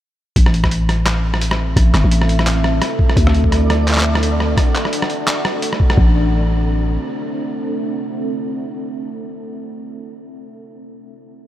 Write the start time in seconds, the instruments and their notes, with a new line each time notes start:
0.35 808-style bass A1, ambient pad C4 A4 E5, kick, closed hi-hat
0.46 cross-stick
0.54 closed hi-hat
0.64 kick, cross-stick
0.71 closed hi-hat
0.89 cross-stick, closed hi-hat
1.06 cross-stick, clap, closed hi-hat
1.34 cross-stick
1.41 closed hi-hat
1.51 cross-stick
1.76 808-style bass A1, kick, cross-stick, closed hi-hat
1.94 808-style bass G1, cross-stick, clap, closed hi-hat
2.04 808-style bass A1
2.12 closed hi-hat
2.22 cross-stick
2.29 closed hi-hat
2.39 cross-stick
2.47 clap, closed hi-hat
2.64 cross-stick
2.82 cross-stick, closed hi-hat
2.99 kick
3.10 cross-stick
3.16 808-style bass D2, ambient pad D4 F#5, synth texture D5, kick, closed hi-hat
3.27 cross-stick
3.34 closed hi-hat
3.44 kick
3.52 cross-stick, closed hi-hat
3.70 cross-stick, closed hi-hat
3.88 clap, closed hi-hat
3.91 clap
3.93 clap
3.97 cross-stick, clap
3.99 clap
4.03 clap
4.15 cross-stick
4.23 closed hi-hat
4.40 cross-stick
4.57 kick, cross-stick, closed hi-hat
4.75 clap, closed hi-hat
4.85 cross-stick
4.93 closed hi-hat
5.02 cross-stick
5.10 closed hi-hat
5.27 cross-stick, clap, closed hi-hat
5.45 cross-stick
5.62 closed hi-hat
5.73 cross-stick
5.80 kick
5.90 cross-stick
5.97 808-style bass A1, ambient pad C4 A4 E5, kick